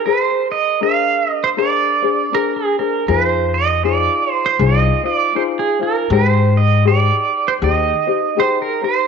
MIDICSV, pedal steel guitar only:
0, 0, Header, 1, 2, 480
1, 0, Start_track
1, 0, Tempo, 756620
1, 34, Time_signature, 4, 2, 24, 8
1, 5757, End_track
2, 0, Start_track
2, 0, Title_t, "Pedal steel guitar"
2, 0, Program_c, 0, 26
2, 36, Note_on_c, 0, 72, 103
2, 301, Note_off_c, 0, 72, 0
2, 327, Note_on_c, 0, 75, 98
2, 523, Note_off_c, 0, 75, 0
2, 527, Note_on_c, 0, 77, 104
2, 831, Note_off_c, 0, 77, 0
2, 831, Note_on_c, 0, 75, 104
2, 912, Note_on_c, 0, 72, 82
2, 915, Note_off_c, 0, 75, 0
2, 944, Note_off_c, 0, 72, 0
2, 1005, Note_on_c, 0, 74, 96
2, 1488, Note_on_c, 0, 70, 81
2, 1494, Note_off_c, 0, 74, 0
2, 1626, Note_on_c, 0, 68, 80
2, 1628, Note_off_c, 0, 70, 0
2, 1768, Note_off_c, 0, 68, 0
2, 1770, Note_on_c, 0, 70, 77
2, 1956, Note_on_c, 0, 71, 93
2, 1965, Note_off_c, 0, 70, 0
2, 2070, Note_off_c, 0, 71, 0
2, 2070, Note_on_c, 0, 72, 93
2, 2247, Note_on_c, 0, 75, 92
2, 2249, Note_off_c, 0, 72, 0
2, 2441, Note_off_c, 0, 75, 0
2, 2444, Note_on_c, 0, 74, 89
2, 2748, Note_off_c, 0, 74, 0
2, 2748, Note_on_c, 0, 72, 89
2, 2828, Note_off_c, 0, 72, 0
2, 2828, Note_on_c, 0, 72, 84
2, 2922, Note_off_c, 0, 72, 0
2, 2924, Note_on_c, 0, 75, 94
2, 3207, Note_off_c, 0, 75, 0
2, 3209, Note_on_c, 0, 74, 87
2, 3402, Note_on_c, 0, 72, 83
2, 3404, Note_off_c, 0, 74, 0
2, 3440, Note_off_c, 0, 72, 0
2, 3548, Note_on_c, 0, 68, 83
2, 3689, Note_off_c, 0, 68, 0
2, 3698, Note_on_c, 0, 70, 83
2, 3887, Note_on_c, 0, 71, 95
2, 3888, Note_off_c, 0, 70, 0
2, 3995, Note_off_c, 0, 71, 0
2, 3995, Note_on_c, 0, 72, 95
2, 4170, Note_on_c, 0, 75, 92
2, 4175, Note_off_c, 0, 72, 0
2, 4360, Note_off_c, 0, 75, 0
2, 4362, Note_on_c, 0, 74, 99
2, 4746, Note_on_c, 0, 72, 84
2, 4752, Note_off_c, 0, 74, 0
2, 4777, Note_off_c, 0, 72, 0
2, 4846, Note_on_c, 0, 75, 95
2, 5327, Note_on_c, 0, 72, 85
2, 5333, Note_off_c, 0, 75, 0
2, 5465, Note_off_c, 0, 72, 0
2, 5468, Note_on_c, 0, 70, 84
2, 5608, Note_off_c, 0, 70, 0
2, 5610, Note_on_c, 0, 72, 88
2, 5757, Note_off_c, 0, 72, 0
2, 5757, End_track
0, 0, End_of_file